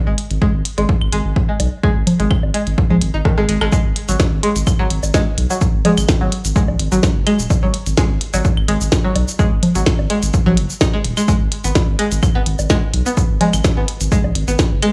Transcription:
0.07 sub bass G#1, synth pluck G#3
0.18 closed hi-hat
0.30 sub bass G#1, closed hi-hat
0.42 synth pluck G#3, kick
0.54 sub bass G#1
0.65 closed hi-hat
0.78 sub bass G#1, synth pluck G#3, closed hi-hat, low woodblock
0.89 kick
1.01 sub bass G#1, claves
1.12 sub bass G#1, synth pluck G#3, closed hi-hat
1.25 sub bass G#1
1.36 kick
1.49 synth pluck G#3
1.60 sub bass B1, closed hi-hat, low woodblock
1.83 synth pluck G#3, kick
1.96 sub bass G#1
2.07 closed hi-hat, low conga
2.20 sub bass G#1, synth pluck G#3, closed hi-hat
2.31 kick, claves
2.43 sub bass G#1, low woodblock
2.54 synth pluck G#3, closed hi-hat
2.67 sub bass G#1, closed hi-hat
2.78 kick
2.90 sub bass A#1, synth pluck G#3, low conga
3.01 sub bass G#1, closed hi-hat
3.14 sub bass G#1, synth pluck D#4
3.25 synth pluck D#3, kick, cross-stick, low woodblock
3.38 sub bass G#1, synth pluck G#3, cross-stick
3.49 sub bass G#1, synth pluck G#3, closed hi-hat
3.61 sub bass G#1, synth pluck G#3, cross-stick, claves
3.72 synth pluck G#3, kick, cabasa
3.85 sub bass G#1
3.96 closed hi-hat
4.08 sub bass G#1, synth pluck F#3, closed hi-hat, cabasa
4.20 kick, snare, cabasa, low woodblock
4.32 sub bass G#1
4.43 synth pluck G#3, closed hi-hat
4.56 sub bass G#1, closed hi-hat, cabasa
4.67 kick, cabasa, claves
4.79 sub bass G#1, synth pluck F#3
4.90 sub bass G#1, closed hi-hat
5.03 sub bass G#1, cabasa, low woodblock
5.14 synth pluck G#3, kick, snare, cabasa
5.38 sub bass B1, closed hi-hat
5.50 synth pluck F#3, cabasa
5.61 kick, cabasa
5.74 sub bass G#1
5.85 synth pluck G#3, closed hi-hat, low conga, low woodblock
5.98 sub bass G#1, closed hi-hat, cabasa, claves
6.09 kick, snare, cabasa
6.21 sub bass G#1, synth pluck F#3
6.32 closed hi-hat
6.45 sub bass G#1, closed hi-hat, cabasa
6.56 synth pluck G#3, kick, cabasa
6.68 sub bass A#1, low woodblock
6.79 sub bass G#1, closed hi-hat
6.92 sub bass G#1, synth pluck F#3, cabasa
7.03 kick, snare, cabasa
7.15 sub bass F#1
7.27 synth pluck G#3, closed hi-hat, claves
7.39 sub bass D#1, cabasa
7.50 kick, cabasa, low woodblock
7.63 sub bass G#1, synth pluck F#3
7.74 closed hi-hat
7.86 sub bass G#1, closed hi-hat, cabasa
7.97 synth pluck G#3, kick, snare, cabasa
8.10 sub bass G#1
8.21 closed hi-hat
8.34 sub bass G#1, synth pluck F#3, closed hi-hat, cabasa, low woodblock
8.45 kick, cabasa
8.57 sub bass G#1, claves
8.68 sub bass G#1, synth pluck G#3, closed hi-hat
8.81 sub bass G#1, cabasa
8.92 kick, snare, cabasa
9.04 synth pluck F#3
9.16 sub bass B1, closed hi-hat, low woodblock
9.28 cabasa
9.39 synth pluck G#3, kick, cabasa
9.52 sub bass G#1
9.63 closed hi-hat, low conga
9.75 sub bass G#1, synth pluck F#3, closed hi-hat, cabasa
9.86 kick, snare, cabasa, claves
9.99 sub bass G#1, low woodblock
10.10 synth pluck G#3, closed hi-hat
10.23 sub bass G#1, closed hi-hat, cabasa
10.34 kick, cabasa
10.46 sub bass A#1, synth pluck F#3, low conga
10.57 sub bass F#1, closed hi-hat
10.70 cabasa
10.81 synth pluck D#4, kick, snare, cabasa, low woodblock
10.94 synth pluck G#3
11.05 sub bass D#1, closed hi-hat
11.17 synth pluck G#3, cabasa, claves
11.28 synth pluck G#3, kick, cabasa
11.41 sub bass G#1
11.52 closed hi-hat
11.64 sub bass G#1, synth pluck B3, closed hi-hat, cabasa
11.75 kick, snare, cabasa, low woodblock
11.88 sub bass G#1
11.99 synth pluck G#3, closed hi-hat
12.12 sub bass G#1, closed hi-hat, cabasa
12.23 kick, cabasa, claves
12.35 sub bass G#1, synth pluck B3
12.46 sub bass G#1, closed hi-hat
12.59 sub bass G#1, cabasa, low woodblock
12.70 synth pluck G#3, kick, snare, cabasa
12.94 sub bass B1, closed hi-hat
13.06 synth pluck B3, cabasa
13.17 kick, cabasa
13.30 sub bass G#1
13.41 synth pluck G#3, closed hi-hat, low conga, low woodblock
13.53 sub bass G#1, closed hi-hat, cabasa, claves
13.64 kick, snare, cabasa
13.77 sub bass G#1, synth pluck B3
13.88 closed hi-hat
14.01 sub bass G#1, closed hi-hat, cabasa
14.12 synth pluck G#3, kick, cabasa
14.24 sub bass A#1, low woodblock
14.35 sub bass G#1, closed hi-hat
14.48 sub bass G#1, synth pluck B3, cabasa
14.59 kick, snare, cabasa
14.71 sub bass F#1
14.83 synth pluck G#3, closed hi-hat, claves

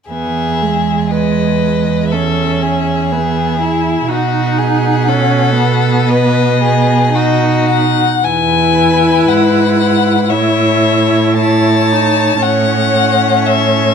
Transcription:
0.10 cello E2, viola B3, violin G#4 E5
0.62 viola G#3
1.11 violin B4 D#5
2.11 viola C#4, violin A4 E5
2.62 violin G#4
3.12 viola B3, violin E5
3.61 viola E4
4.08 cello B2, viola D#4, violin F#4 F#5
4.58 violin G#4
5.08 viola C#4, violin A4
5.59 viola B3
6.09 violin B4 D#5
6.62 violin G#4
7.13 viola D#4, violin F#4 D#5
7.68 violin F#5
8.24 cello E2, viola E4, violin B4 G#5
9.28 cello G#2, violin F#5
10.30 cello A2, viola E4, violin C#5 E5
11.38 viola E4, violin C#5 A5
11.92 viola D#4
12.43 cello A2, viola C#4, violin C#5 F#5
13.46 violin E5

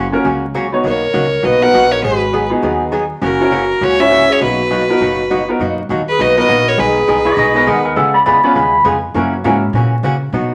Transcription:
Already playing: upright bass F#1
0.12 upright piano A#3 C#4 F#4 A#4
0.24 upright bass C#2, hollow-body jazz guitar C#3 F#3 A#3 C#4 F#4
0.54 hollow-body jazz guitar C#3 F#3 A#3 C#4 F#4
0.72 upright piano B3 D#4 F#4 C#5
0.84 upright bass B1, hollow-body jazz guitar B2 F#3 A#3 D#4 F#4, clarinet A#4, fiddle C#5
1.13 upright bass C#2, hollow-body jazz guitar B2 F#3 A#3 D#4 F#4
1.43 upright bass B1, hollow-body jazz guitar B2 F#3 A#3 D#4 F#4, clarinet B4, fiddle D#5
1.61 upright piano B3 D#4 F#4 A#4, clarinet B4, fiddle F#5
1.73 upright bass A#1, hollow-body jazz guitar B2 F#3 A#3 D#4 F#4
1.91 clarinet A#4, fiddle C#5
2.03 upright bass G#1, hollow-body jazz guitar D#3 F#3 B3 D#4 G#4, clarinet F#4, fiddle B4
2.33 hollow-body jazz guitar D#3 F#3 B3 D#4 G#4
2.50 upright piano B3 D#4 F#4 G#4
2.63 upright bass D#2, hollow-body jazz guitar D#3 F#3 B3 D#4 G#4
2.92 hollow-body jazz guitar D#3 F#3 B3 D#4 G#4
3.21 upright bass F#1, hollow-body jazz guitar C#3 E3 A#3 C#4 F#4, clarinet F#4, fiddle A#4
3.40 upright piano C#4 E4 F#4 A#4
3.51 hollow-body jazz guitar C#3 E3 A#3 C#4 F#4
3.81 upright bass C#2, hollow-body jazz guitar C#3 E3 A#3 C#4 F#4, clarinet F#4, fiddle C#5
3.99 upright piano C#4 E4 F#4 C#5, clarinet C#5, fiddle E5
4.11 hollow-body jazz guitar C#3 E3 A#3 C#4 F#4
4.30 clarinet G#4, fiddle C#5
4.40 upright bass B1, hollow-body jazz guitar B2 F#3 A#3 D#4 F#4, clarinet F#4, fiddle B4
4.70 hollow-body jazz guitar B2 F#3 A#3 D#4 F#4
4.89 upright piano B3 D#4 F#4 A#4
5.00 upright bass F#1, hollow-body jazz guitar B2 F#3 A#3 D#4 F#4
5.30 hollow-body jazz guitar B2 F#3 A#3 D#4 F#4
5.48 upright piano B3 D#4 F#4 A#4
5.59 upright bass F#2, hollow-body jazz guitar B2 F#3 A#3 D#4 F#4
5.89 upright bass D#2, hollow-body jazz guitar B2 F#3 A#3 D#4 F#4
6.08 clarinet G#4, fiddle B4
6.19 upright bass B1, hollow-body jazz guitar B2 F#3 A#3 D#4 F#4, clarinet B4, fiddle D#5
6.37 upright piano B3 D#4 F#4 A#4 B4, clarinet B4, fiddle D#5
6.49 upright bass A#1, hollow-body jazz guitar B2 F#3 A#3 D#4 F#4
6.67 clarinet A#4, fiddle C#5
6.77 upright bass B1, hollow-body jazz guitar B2 D#3 G#3 D#4 G#4 A#4, clarinet G#4, fiddle B4
7.08 upright bass C2, hollow-body jazz guitar B2 D#3 G#3 D#4 G#4 A#4
7.25 electric slide guitar F#4 D#5
7.37 upright bass B1, hollow-body jazz guitar B2 D#3 G#3 D#4 G#4 A#4, electric slide guitar F#4 D#5
7.54 upright piano B3 D#4 G#4 A#4 B4, electric slide guitar F#4 D#5
7.67 upright bass D#2, hollow-body jazz guitar B2 D#3 G#3 D#4 G#4 A#4, electric slide guitar A#4 F#5
7.85 electric slide guitar A#4 F#5
7.96 upright bass C#2, hollow-body jazz guitar C#3 G#3 B3 F4 G#4, electric slide guitar A4 F#5
8.14 electric slide guitar D5 B5
8.26 upright bass E2, hollow-body jazz guitar C#3 G#3 B3 F4 G#4, electric slide guitar D5 B5
8.44 upright piano B3 C#4 F4 G#4 B4, electric slide guitar D5 B5
8.55 upright bass D#2, hollow-body jazz guitar C#3 G#3 B3 F4 G#4, electric slide guitar B5
8.84 upright bass F2, hollow-body jazz guitar C#3 G#3 B3 F4 G#4
9.14 upright bass F#2, hollow-body jazz guitar C#3 E3 A#3 C#4 F#4, upright piano A#3 C#4 E4 F#4 A#4
9.44 upright bass G#2, hollow-body jazz guitar C#3 E3 A#3 C#4 F#4, upright piano A#3 C#4 E4 F#4 A#4
9.73 upright bass A#2, hollow-body jazz guitar C#3 E3 A#3 C#4 F#4
10.03 upright bass C#3, hollow-body jazz guitar C#3 E3 A#3 C#4 F#4
10.33 upright bass B2, hollow-body jazz guitar B2 F#3 B3 D#4 F#4

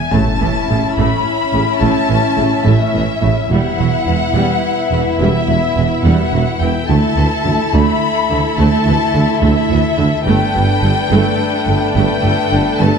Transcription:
Already playing: violin section G#5
0.10 tuba A1, double bass section A1, cello section A2, viola section A3 C#4, french horn section C#4 E4, violin section E4 E5 A5, impact
0.40 tuba A1, double bass section A1, cello section A2, viola section E3
0.70 tuba A1, double bass section A1, cello section A2, viola section C#3
0.95 tuba A1, double bass section A1, cello section A2, viola section A3, violin section B5
1.52 tuba A1, double bass section A1, cello section A2, viola section C#3
1.80 tuba A1, double bass section A1, cello section A2, viola section A3, violin section A5
2.08 tuba A1, double bass section A1, cello section A2, viola section E3
2.37 tuba A1, double bass section A1, cello section A2, viola section C#3
2.65 tuba A1, double bass section A1, cello section A2, viola section A3, violin section E5
2.93 tuba A1, double bass section A1, cello section A2, viola section E3
3.22 tuba A1, double bass section A1, cello section A2, viola section C#3
3.49 tuba E1, double bass section E1, cello section E2, viola section G3 E4, french horn section B3 E4, violin section E4 E5 F#5
3.78 tuba E1, double bass section E1, cello section E2, viola section F#3
4.06 tuba E1, double bass section E1, cello section E2, viola section E3
4.34 double bass section E1, tuba E1, cello section E2, viola section G3
4.91 tuba E1, double bass section E1, cello section E2, viola section E3
5.19 tuba E1, double bass section E1, cello section E2, viola section G3, violin section E5
5.47 tuba E1, double bass section E1, cello section E2, viola section F#3
5.75 tuba E1, double bass section E1, cello section E2, viola section E3
6.03 tuba E1, double bass section E1, cello section E2, viola section G3, violin section F#5
6.32 tuba E1, double bass section E1, cello section E2, viola section F#3
6.60 tuba E1, double bass section E1, cello section E2, viola section E3, violin section G5
6.88 tuba D2, cello section D2, double bass section D2, french horn section A3 E4, viola section A3 E4, violin section A4 E5 A5
7.16 cello section D2, tuba D2, double bass section D2, viola section E3
7.44 tuba D2, cello section D2, double bass section D2, viola section D3
7.73 tuba D2, cello section D2, double bass section D2, viola section A3, violin section B5
8.30 tuba D2, cello section D2, double bass section D2, viola section D3
8.57 tuba D2, double bass section D2, cello section D2, viola section A3, violin section A5
8.85 tuba D2, double bass section D2, cello section D2, viola section E3
9.14 tuba D2, double bass section D2, cello section D2, viola section D3
9.41 tuba D2, cello section D2, double bass section D2, viola section A3, violin section E5
9.70 tuba D2, cello section D2, double bass section D2, viola section E3
9.98 cello section D2, tuba D2, double bass section D2, viola section D3
10.24 tuba G1, double bass section G1, cello section G2, viola section A3 D4, french horn section A3 D4, violin section A4 B4 G5
10.54 tuba G1, double bass section G1, cello section G2, viola section G3
10.83 tuba G1, double bass section G1, cello section G2, viola section D3
11.10 tuba G1, double bass section G1, cello section G2, viola section A3
11.67 tuba G1, double bass section G1, cello section G2, viola section D3
11.95 tuba G1, double bass section G1, cello section G2, viola section A3, violin section G5
12.23 tuba G1, double bass section G1, cello section G2, viola section G3
12.52 tuba G1, double bass section G1, cello section G2, viola section D3
12.79 tuba G1, double bass section G1, cello section G2, viola section A3, violin section A5

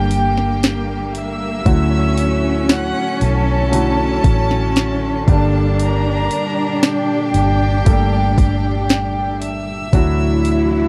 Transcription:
Already playing: fingered electric bass G1, string section D3 G3 A#3 G4, grand piano G3 A#3 D4 G4 A4, cello section A#3, violin section G4 G5
0.11 open hi-hat
0.38 snare
0.63 snare, open hi-hat
1.15 violin section E5 E6, open hi-hat
1.66 fingered electric bass D2, grand piano A2 D3 F#3 A3 E4 F#4, string section D3 F#3 E4 F#4, cello section C#4, kick, open hi-hat
2.18 open hi-hat
2.69 violin section F#5 F#6, snare, open hi-hat
3.21 fingered electric bass B1, violin section A4 A5, open hi-hat
3.72 grand piano D3 F#3 A3 E4 F#4, open hi-hat
4.24 fingered electric bass A1, kick, open hi-hat
4.51 snare
4.76 snare, open hi-hat
5.26 fingered electric bass G1, grand piano G2 D3 G3 A#3 D4 G4, string section A#2 G3 G4, cello section D4, violin section A4 A5, kick, open hi-hat
5.79 violin section A#4 A#5, open hi-hat
6.31 open hi-hat
6.83 violin section G4 G5, snare, open hi-hat
7.34 fingered electric bass G1, open hi-hat
7.85 fingered electric bass G1, grand piano G3 A3 A#3 D4 A4, kick, open hi-hat
8.38 kick, open hi-hat
8.89 snare, open hi-hat
9.42 violin section E5 E6, open hi-hat
9.93 fingered electric bass D2, grand piano A2 F#3 A3 D4 E4 F#4, string section E3 F#3 D4 F#4, cello section E4, kick, open hi-hat
10.45 open hi-hat

